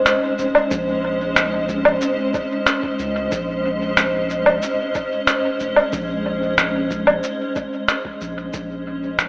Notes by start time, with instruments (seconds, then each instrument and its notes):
Already playing: ambient pad G#3 C#4 C5 D#5
0.06 finger snap, cabasa
0.38 sub bass F1, cabasa
0.55 low woodblock
0.71 sub bass A#1, kick, cabasa
1.36 finger snap, cabasa
1.69 kick, cabasa
1.85 low woodblock
2.01 cabasa
2.34 kick, cabasa
2.67 finger snap, cabasa
2.83 kick
2.99 sub bass C#2, cabasa
3.32 sub bass A#1, kick, cabasa
3.97 finger snap, cabasa
4.30 cabasa
4.46 low woodblock
4.62 cabasa
4.95 kick, cabasa
5.27 finger snap, cabasa
5.60 sub bass F1, cabasa
5.76 low woodblock
5.93 sub bass A#1, kick, cabasa
6.58 finger snap, cabasa
6.91 kick, cabasa
7.07 low woodblock
7.23 cabasa
7.56 kick, cabasa
7.88 finger snap, cabasa
8.05 kick
8.21 sub bass A#1, cabasa
8.53 sub bass A#1, kick, cabasa
9.19 finger snap, cabasa